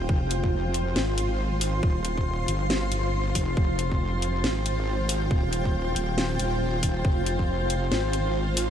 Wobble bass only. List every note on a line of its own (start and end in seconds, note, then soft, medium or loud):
0.09 0.95 F1 loud
0.96 1.81 G#1 medium
1.83 2.47 D#1 loud
2.48 3.34 G1 medium
3.35 3.55 F1 loud
3.57 4.42 F1 loud
4.44 5.29 G#1 loud
5.31 5.95 D#1 loud
5.96 6.38 D#1 loud
6.40 7.03 D#1 loud
7.05 7.90 F1 loud
7.92 8.70 G#1 medium